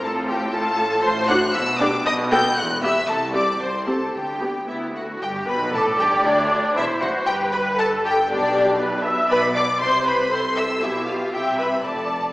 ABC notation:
X:1
M:2/4
L:1/16
Q:1/4=117
K:F
V:1 name="Violin section"
a2 g2 a4 | [K:G] c'2 f'2 e'2 d'2 | ^d'2 g'2 f'2 e'2 | a2 d'2 c'2 a2 |
g4 e2 f2 | g2 b2 a2 g2 | d4 e2 f2 | g2 b2 a2 g2 |
d4 z4 | [K:C] b2 d'2 c'2 b2 | c'2 e'2 e2 f2 | g2 b2 a4 |]
V:2 name="Violin section"
A2 G2 A4 | [K:G] c2 f2 e2 d2 | ^d2 g2 f2 e2 | A2 d2 c2 A2 |
G4 E2 F2 | G2 B2 A2 G2 | D4 E2 F2 | G2 B2 A2 G2 |
D4 z4 | [K:C] B2 d2 c2 B2 | c2 e2 E2 F2 | G2 B2 A4 |]
V:3 name="Viola section"
[CF]4 [A,F]4 | [K:G] z2 [DF] z3 [DG] z | z2 [B,A] z3 [B,G] z | z2 [CG] z3 [CG] z |
z2 [B,G] z B,2 A,2 | z4 d4- | d4 c4 | B4 A4 |
G4 B2 e2 | [K:C] d4 c4 | A4 G4 | e4 d4 |]
V:4 name="Cello section" clef=bass
A,,8 | [K:G] A,,4 B,,4 | B,,4 E,,4 | C,,4 C,,4 |
D,,4 D,,4 | G,,2 B,,2 A,,2 G,,2 | D,,4 E,,2 F,,2 | G,,8 |
B,,8 | [K:C] B,,4 C,4 | C,4 B,,4 | C,4 F,,4 |]
V:5 name="Double bass section" clef=bass
A,,,8 | [K:G] A,,,4 B,,,4 | B,,,4 E,,,4 | C,,4 C,,4 |
D,,4 D,,4 | G,,,2 B,,,2 A,,,2 G,,,2 | D,,4 E,,,2 F,,,2 | G,,,8 |
B,,,8 | [K:C] B,,,4 C,,4 | C,,4 B,,,4 | C,,4 F,,,4 |]